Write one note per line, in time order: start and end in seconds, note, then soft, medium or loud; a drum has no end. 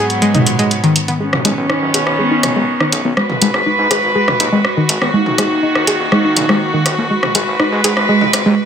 0.00 1.18 G#2 medium
0.00 1.25 G#2 medium
0.00 1.18 F#3 medium
0.00 1.18 B3 medium
0.10 closed hi-hat soft
0.22 0.34 G#3 loud
0.22 closed hi-hat soft
0.35 0.39 D#4 medium
0.35 closed hi-hat soft
0.35 mid tom medium
0.46 closed hi-hat medium
0.59 0.70 G#3 loud
0.59 closed hi-hat soft
0.71 closed hi-hat soft
0.84 0.95 D#3 loud
0.84 closed hi-hat soft
0.96 closed hi-hat medium
1.08 1.16 B3 medium
1.08 closed hi-hat soft
1.20 3.15 D#3 medium
1.20 1.32 G#3 medium
1.20 3.15 B3 medium
1.20 3.15 C#4 medium
1.20 2.09 C#4 loud
1.33 cross-stick soft
1.33 mid tom medium
1.45 1.54 B1 medium
1.45 1.50 G#3 loud
1.45 closed hi-hat loud
1.57 1.66 B1 medium
1.69 1.81 D#4 medium
1.69 cross-stick soft
1.82 1.91 F#1 medium
1.94 2.03 B1 medium
1.94 2.02 G#4 loud
1.94 closed hi-hat medium
2.07 2.16 B1 medium
2.07 cross-stick medium
2.19 2.30 G#3 loud
2.19 3.07 B3 loud
2.31 2.36 D#4 medium
2.43 2.53 F#1 medium
2.43 cross-stick medium
2.43 closed hi-hat loud
2.43 mid tom medium
2.56 2.65 B1 medium
2.56 2.67 G#3 loud
2.80 2.92 D#3 loud
2.80 cross-stick medium
2.92 3.02 B1 medium
2.92 closed hi-hat medium
3.05 3.14 B1 medium
3.05 3.12 B3 medium
3.17 5.12 G#3 medium
3.17 3.29 G#3 medium
3.17 8.65 F#4 medium
3.17 5.12 B4 medium
3.17 cross-stick medium
3.30 mid tom medium
3.42 3.51 G#1 medium
3.42 3.46 G#3 loud
3.42 closed hi-hat loud
3.54 3.63 G#1 medium
3.54 cross-stick medium
3.66 3.78 D#4 medium
3.79 3.88 G#2 medium
3.91 4.00 G#1 loud
3.91 3.98 G#4 loud
3.91 cross-stick medium
3.91 closed hi-hat loud
4.03 4.12 G#1 medium
4.15 4.27 G#3 loud
4.28 4.32 D#4 medium
4.28 cross-stick medium
4.28 mid tom medium
4.40 4.49 D#2 medium
4.40 closed hi-hat loud
4.52 4.62 G#1 medium
4.52 4.64 G#3 loud
4.65 cross-stick soft
4.77 4.88 D#3 loud
4.89 4.99 G#1 loud
4.89 closed hi-hat medium
5.02 5.11 G#1 medium
5.02 5.09 B3 medium
5.02 cross-stick medium
5.14 7.08 D#3 medium
5.14 5.25 G#3 medium
5.14 7.08 A#3 medium
5.14 6.02 D#4 loud
5.26 mid tom medium
5.38 5.48 D#1 loud
5.38 5.43 G#3 loud
5.38 cross-stick soft
5.38 closed hi-hat loud
5.51 5.60 D#1 medium
5.63 5.74 D#4 medium
5.75 5.84 D#2 medium
5.75 cross-stick soft
5.87 5.97 D#1 loud
5.87 5.95 G#4 loud
5.87 closed hi-hat medium
6.00 6.09 D#1 medium
6.12 6.24 G#3 loud
6.12 7.01 D#4 loud
6.12 cross-stick medium
6.24 6.29 D#4 medium
6.37 6.46 A#1 medium
6.37 closed hi-hat loud
6.37 mid tom medium
6.49 6.58 D#1 medium
6.49 6.60 G#3 loud
6.49 cross-stick medium
6.74 6.85 D#3 loud
6.86 6.95 D#1 loud
6.86 cross-stick soft
6.86 closed hi-hat medium
6.98 7.07 D#1 medium
6.98 7.06 A#3 medium
7.10 8.65 G#3 medium
7.10 7.22 G#3 medium
7.10 8.65 B4 medium
7.23 cross-stick soft
7.23 mid tom medium
7.35 7.44 G#1 medium
7.35 7.40 G#3 loud
7.35 closed hi-hat loud
7.47 7.57 G#1 medium
7.60 7.71 D#4 medium
7.60 cross-stick medium
7.72 7.81 G#2 medium
7.84 7.94 G#1 loud
7.84 7.92 G#4 loud
7.84 closed hi-hat loud
7.97 8.06 G#1 medium
7.97 cross-stick medium
8.09 8.20 G#3 loud
8.21 8.26 D#4 medium
8.21 mid tom medium
8.33 8.43 G#1 loud
8.33 cross-stick medium
8.33 closed hi-hat loud
8.46 8.55 D#2 medium
8.46 8.57 G#3 loud